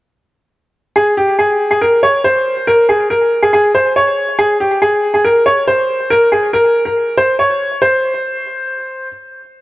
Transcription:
0.96 G#4
1.17 G4
1.39 G#4
1.71 G#4
1.81 A#4
2.03 C#5
2.24 C5
2.67 A#4
2.89 G#4
3.10 A#4
3.42 G#4
3.53 G#4
3.75 C5
3.96 C#5
4.39 G#4
4.60 G4
4.82 G#4
5.14 G#4
5.25 A#4
5.46 C#5
5.68 C5
6.10 A#4
6.32 G#4
6.53 A#4
6.85 A#4
7.17 C5
7.39 C#5
7.82 C5

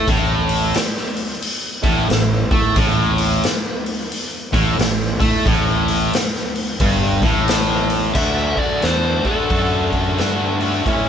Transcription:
0.08 A1 A2, kick, open hi-hat
0.49 open hi-hat
0.74 snare, open hi-hat
0.97 snare
1.17 open hi-hat
1.42 open hi-hat
1.83 A1 A2, kick, snare, open hi-hat
2.09 A1 A2, snare, open hi-hat
2.51 A2 A3, kick, open hi-hat
2.76 A1 A2, kick, open hi-hat
3.18 open hi-hat
3.44 snare, open hi-hat
3.86 open hi-hat
4.12 open hi-hat
4.53 A1 A2, kick, open hi-hat
4.78 A1 A2, snare, open hi-hat
5.20 A2 A3, kick, open hi-hat
5.46 A1 A2, kick, open hi-hat
5.88 open hi-hat
6.14 snare, open hi-hat
6.36 snare
6.56 open hi-hat
6.80 G1 G2, kick, open hi-hat
7.22 A1 A2, kick, snare, open hi-hat
7.48 snare, open hi-hat
7.90 open hi-hat
8.14 D2 D3 A3 D4 F#4 E5, kick, crash
8.57 D5, muted fingered electric bass stroke, kick, open hi-hat
8.82 E2 D3 A3 D4 F#4 C5, snare, open hi-hat
9.24 D3 A3 D4 F#4 A4, muted fingered electric bass stroke, kick, open hi-hat
9.50 F#2 D3 A3 D4 F#4, kick, open hi-hat
9.92 kick, open hi-hat
10.18 G2 D3 A3 D4 F#4, snare, open hi-hat
10.61 D3 A3 D4 F#4, open hi-hat
10.86 A2 E3 A3 C#4 E4, kick, open hi-hat

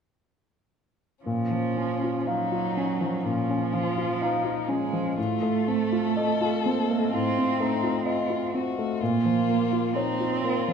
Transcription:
1.25 A#2 F3 C#4
1.51 F3
1.77 C#4
2.04 F4
2.26 F#3 D#4 F5
2.52 F4
2.77 C#4
3.01 F3
3.25 A#2 F3 C#4
3.50 C#4
3.73 F3 F4
3.98 F4
4.21 D#4 F5
4.45 F4
4.68 G#3 C#4
4.93 F3
5.16 A2 A3 F4
5.42 A3
5.68 C4 A4
5.92 F4
6.17 D#5
6.41 F4
6.65 A#3 C4
6.91 A3
7.13 A2 C4 F4
7.39 C4
7.60 A3 D#4
7.83 F4
8.06 F4 D#5
8.30 F4
8.53 C4 F#4
8.79 A3
9.00 A#2 A#3 F4
9.26 F3
9.49 A#3
9.73 F4
9.94 C4 D#4 C#5
10.20 F4
10.42 A#3 F4
10.68 F3

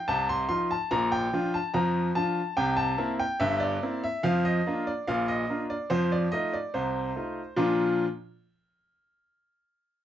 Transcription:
0.08 C2 C3 A5
0.29 C6
0.49 F3 D#4 F4 C6
0.71 A5
0.91 A#1 A#2 A#5
1.12 G5
1.33 F3 D4 F4
1.54 A5
1.74 F2 F3 A#5
2.15 F3 D4 F4 A5
2.57 C2 C3 G5
2.77 A5
2.98 A#3 C4 E4
3.19 G5
3.40 G1 G2 E5
3.60 D5
3.82 A#3 C4 E4
4.04 E5
4.23 F2 F3 F5
4.45 D#5
4.67 A#3 D4 F4
4.87 D5
5.08 A#1 A#2 F5
5.28 D#5
5.49 A#3 D4 F4
5.70 D5
5.90 F2 F3 C5
6.12 D5
6.32 A3 D#4 F4 D#5
6.53 D5
6.74 C2 C3 C5
7.16 A3 D#4 F4
7.57 A#2 F3 D4 F4 A#4

